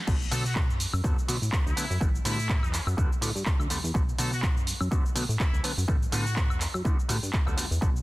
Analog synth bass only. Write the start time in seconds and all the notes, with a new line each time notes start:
0.08 B1
0.31 B2
0.69 F#2
0.93 F#2
1.04 F#2
1.29 B2
1.42 A2
1.66 D2
1.90 F#2
2.01 A1
2.25 A2
2.63 E2
2.87 F#2
2.98 E2
3.21 A2
3.35 G2
3.59 D2
3.70 E2
3.84 E2
3.95 B1
4.19 B2
4.57 F#2
4.81 F#2
4.92 F#2
5.15 B2
5.29 A2
5.53 D2
5.77 F#2
5.89 A1
6.13 A2
6.50 E2
6.74 F#2
6.85 E2
7.09 A2
7.23 G2
7.47 D2
7.71 E2
7.82 B1